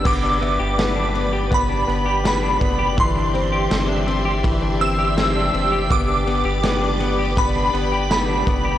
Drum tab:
CC |x-------|--------|--------|
RD |-xxxxxxx|xxxxxxxx|xxxxxxxx|
TB |--x---x-|--x---x-|--x---x-|
SD |--o---o-|--o---o-|--o---o-|
BD |o---o--o|o---o---|o---o--o|